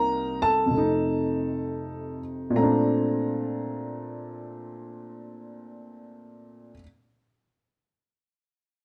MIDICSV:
0, 0, Header, 1, 2, 480
1, 0, Start_track
1, 0, Key_signature, -2, "major"
1, 0, Tempo, 500000
1, 8491, End_track
2, 0, Start_track
2, 0, Title_t, "Upright piano"
2, 0, Program_c, 0, 0
2, 0, Note_on_c, 0, 36, 54
2, 0, Note_on_c, 0, 48, 52
2, 0, Note_on_c, 0, 58, 50
2, 0, Note_on_c, 0, 63, 64
2, 0, Note_on_c, 0, 70, 67
2, 0, Note_on_c, 0, 82, 98
2, 370, Note_off_c, 0, 82, 0
2, 378, Note_off_c, 0, 70, 0
2, 404, Note_on_c, 0, 81, 97
2, 414, Note_on_c, 0, 69, 61
2, 634, Note_on_c, 0, 41, 45
2, 663, Note_off_c, 0, 48, 0
2, 678, Note_on_c, 0, 48, 40
2, 683, Note_off_c, 0, 36, 0
2, 696, Note_off_c, 0, 58, 0
2, 705, Note_off_c, 0, 63, 0
2, 706, Note_on_c, 0, 57, 36
2, 745, Note_on_c, 0, 63, 53
2, 2103, Note_off_c, 0, 81, 0
2, 2108, Note_off_c, 0, 69, 0
2, 2404, Note_on_c, 0, 46, 61
2, 2434, Note_off_c, 0, 57, 0
2, 2435, Note_off_c, 0, 41, 0
2, 2449, Note_on_c, 0, 57, 54
2, 2457, Note_off_c, 0, 48, 0
2, 2458, Note_on_c, 0, 82, 73
2, 2481, Note_on_c, 0, 60, 54
2, 2490, Note_off_c, 0, 63, 0
2, 2522, Note_on_c, 0, 62, 64
2, 6442, Note_off_c, 0, 46, 0
2, 6457, Note_off_c, 0, 82, 0
2, 6487, Note_off_c, 0, 57, 0
2, 6519, Note_off_c, 0, 60, 0
2, 6560, Note_off_c, 0, 62, 0
2, 8491, End_track
0, 0, End_of_file